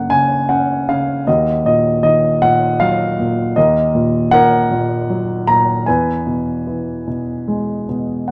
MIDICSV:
0, 0, Header, 1, 2, 480
1, 0, Start_track
1, 0, Tempo, 770218
1, 793, Time_signature, 6, 3, 24, 8
1, 3660, Tempo, 808625
1, 5107, End_track
2, 0, Start_track
2, 0, Title_t, "Grand piano"
2, 0, Program_c, 0, 0
2, 0, Control_c, 0, 64, 127
2, 0, Note_on_c, 0, 42, 47
2, 0, Note_on_c, 0, 49, 41
2, 0, Note_on_c, 0, 58, 43
2, 0, Note_on_c, 0, 70, 42
2, 0, Note_on_c, 0, 77, 64
2, 0, Note_on_c, 0, 78, 68
2, 58, Note_off_c, 0, 49, 0
2, 58, Note_on_c, 0, 49, 43
2, 62, Note_on_c, 0, 80, 81
2, 70, Note_off_c, 0, 78, 0
2, 305, Note_on_c, 0, 78, 67
2, 308, Note_on_c, 0, 61, 50
2, 316, Note_off_c, 0, 80, 0
2, 534, Note_off_c, 0, 78, 0
2, 541, Note_off_c, 0, 49, 0
2, 550, Note_on_c, 0, 49, 38
2, 553, Note_off_c, 0, 77, 0
2, 553, Note_on_c, 0, 77, 74
2, 765, Note_off_c, 0, 58, 0
2, 767, Note_off_c, 0, 42, 0
2, 779, Note_off_c, 0, 61, 0
2, 785, Note_off_c, 0, 49, 0
2, 792, Note_on_c, 0, 39, 54
2, 793, Note_on_c, 0, 75, 62
2, 801, Note_off_c, 0, 77, 0
2, 801, Control_c, 0, 64, 0
2, 803, Note_off_c, 0, 70, 0
2, 803, Note_on_c, 0, 66, 53
2, 897, Control_c, 0, 64, 127
2, 1015, Note_off_c, 0, 75, 0
2, 1030, Note_on_c, 0, 46, 40
2, 1035, Note_on_c, 0, 75, 68
2, 1256, Note_off_c, 0, 75, 0
2, 1266, Note_on_c, 0, 75, 73
2, 1268, Note_on_c, 0, 51, 43
2, 1489, Note_off_c, 0, 66, 0
2, 1490, Note_off_c, 0, 75, 0
2, 1503, Note_off_c, 0, 46, 0
2, 1508, Note_on_c, 0, 78, 88
2, 1512, Note_on_c, 0, 46, 42
2, 1743, Note_on_c, 0, 77, 89
2, 1750, Note_on_c, 0, 54, 56
2, 1753, Note_off_c, 0, 78, 0
2, 1981, Note_off_c, 0, 46, 0
2, 1991, Note_on_c, 0, 46, 43
2, 2194, Note_off_c, 0, 51, 0
2, 2195, Note_off_c, 0, 39, 0
2, 2208, Note_off_c, 0, 54, 0
2, 2217, Note_off_c, 0, 46, 0
2, 2219, Note_on_c, 0, 75, 73
2, 2224, Note_on_c, 0, 39, 57
2, 2229, Control_c, 0, 64, 0
2, 2229, Note_on_c, 0, 70, 51
2, 2233, Note_off_c, 0, 77, 0
2, 2333, Control_c, 0, 64, 127
2, 2459, Note_on_c, 0, 46, 49
2, 2689, Note_on_c, 0, 78, 102
2, 2691, Note_off_c, 0, 70, 0
2, 2695, Note_on_c, 0, 51, 46
2, 2700, Note_on_c, 0, 70, 73
2, 2708, Note_off_c, 0, 75, 0
2, 2926, Note_off_c, 0, 46, 0
2, 2936, Note_on_c, 0, 46, 44
2, 3177, Note_on_c, 0, 54, 51
2, 3386, Note_off_c, 0, 78, 0
2, 3391, Note_off_c, 0, 70, 0
2, 3407, Note_off_c, 0, 46, 0
2, 3412, Note_on_c, 0, 82, 84
2, 3416, Note_on_c, 0, 46, 43
2, 3633, Note_off_c, 0, 51, 0
2, 3634, Note_off_c, 0, 39, 0
2, 3646, Note_off_c, 0, 54, 0
2, 3652, Note_off_c, 0, 46, 0
2, 3654, Note_on_c, 0, 80, 67
2, 3659, Note_on_c, 0, 40, 52
2, 3664, Note_off_c, 0, 82, 0
2, 3665, Note_on_c, 0, 71, 55
2, 3666, Control_c, 0, 64, 0
2, 3784, Control_c, 0, 64, 127
2, 3893, Note_on_c, 0, 47, 40
2, 4134, Note_on_c, 0, 52, 43
2, 4365, Note_off_c, 0, 47, 0
2, 4374, Note_on_c, 0, 47, 41
2, 4613, Note_on_c, 0, 56, 49
2, 4829, Note_off_c, 0, 80, 0
2, 4834, Note_off_c, 0, 71, 0
2, 4847, Note_off_c, 0, 47, 0
2, 4856, Note_on_c, 0, 47, 39
2, 5075, Note_off_c, 0, 40, 0
2, 5076, Note_off_c, 0, 52, 0
2, 5084, Note_off_c, 0, 56, 0
2, 5087, Note_on_c, 0, 78, 59
2, 5091, Note_off_c, 0, 47, 0
2, 5106, Control_c, 0, 64, 0
2, 5107, Note_off_c, 0, 78, 0
2, 5107, End_track
0, 0, End_of_file